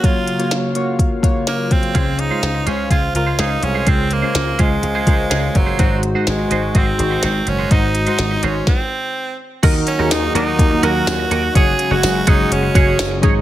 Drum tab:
CC |----------------|----------------|----------------|----------------|
HH |x-xxx-x-x-x-x-xx|x-x-x-x-x-x-x-x-|x-x-x-x-x-x-x-x-|x-x-x-x-x-x-x-x-|
TB |----------------|----------------|----------------|----------------|
SD |----o-------o---|----o-------o---|----o-------o---|----o-------o---|
BD |o-------o-o---o-|o-------o-------|o-----o---o---o-|o-------o-------|

CC |----------------|x---------------|----------------|
HH |x-xxx-x---------|x-x-x-x-x-x-x-x-|x-x-x-x-x-x-x-x-|
TB |----------------|----x-------x---|----x-------x---|
SD |----o---o-------|----o-------o---|----o-------o---|
BD |o-------o-------|o-------o-------|o-----o---o---o-|